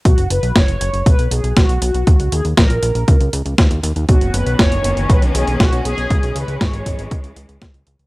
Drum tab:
HH |xxxxxxxxxxxxxxxx|xxxxxxxxxxxxxxxx|xxxxxxxxxxxxxxxx|xxxxxxxxxxxxxxxx|
SD |----o-------o---|----o-------o---|----o-------o---|----o-------o---|
BD |o---o---o---o---|o---o---o---o---|o---o---o---o---|o---o-o-o---o---|